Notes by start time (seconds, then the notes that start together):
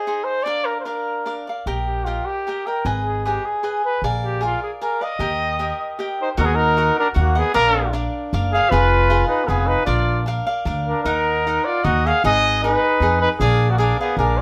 Already playing: G#4
0.07 D#4 G#4 C5 D#5
0.24 C5
0.43 D4 D5
0.47 A#4 D5 F5
0.65 A#4
0.80 C5
0.84 D4 A#4 D5 F5
1.26 D4 A#4 D5 F5
1.47 A#4 D5 F5
1.66 A#1 G4 A#4 D#5 G5
1.86 G4
2.05 F4 G4 A#4 D#5 G5
2.26 G4
2.47 G4 A#4 D#5 G5
2.66 A#4 D#5 G5
2.85 G#1 G#4 B4 D#5 G#5
3.04 G#4
3.25 G4 G#4 B4 D#5 G#5
3.45 G#4
3.63 G#4 B4 D#5 G#5
3.85 B4
4.02 A#1 G#4 A#4 D5 F5
4.24 G4
4.41 F4 G#4 A#4 D5 F5
4.63 G#4
4.82 G#4 A#4 D5 F5
5.01 A#4 D5 D#5 F5
5.19 D#2 G4 A#4 D#5 G5
5.59 G4 A#4 D#5 G5
5.99 G4 A#4 D#5 G5
6.21 D#4 C5
6.37 D#2 D#4 F#4 A#4 D#5 F#5
6.44 B3 G#4
6.55 D#4 A#4
6.77 F#4 A#4 D#5 F#5
6.99 D4 A#4
7.14 D#2 A#3 F#4 A#4 D#5 F#5
7.35 B3 G#4 A#4 D#5 F#5
7.54 A#1 D4 A#4 D5 F5
7.93 D4 A#4 D5 F5
8.33 F#1 D4 A#4 D5 F5
8.52 G#4 D5 F5
8.56 A#4
8.69 F1 F4 G#4 B4 F5
9.10 F4 G#4 B4 F5
9.26 D#4 B4
9.45 F1 B3 G#4
9.49 F4 G#4 B4 F5
9.66 D#4 B4
9.85 A#1 D4 F4 A#4 D5 F5
10.26 D4 A#4 D5 F5
10.47 A#4 D5 F5
10.65 D2 D4 A#4 D5 F5
10.86 D4 A#4
11.03 D#2 D#4 A#4 D#5 F#5
11.47 D#4 A#4 D#5 F#5
11.65 F4 D5
11.84 D#2 D#4 F#4 A#4 D#5 F#5
12.06 G#4 A#4 D#5 F5 F#5
12.24 G#1 D#4 G#4 B4 D#5
12.63 D#4 G#4 B4 D#5
13.00 F2 D#4 G#4 B4 D#5
13.21 D#4 B4
13.40 A#1 D4 G#4 A#4 D5 F5
13.70 A#3 F#4
13.78 D4 G#4 A#4 D5 F5
13.99 B3 G#4 A#4 D5 F5
14.17 A#1 D4 G#4 A#4 D5 F5
14.38 D5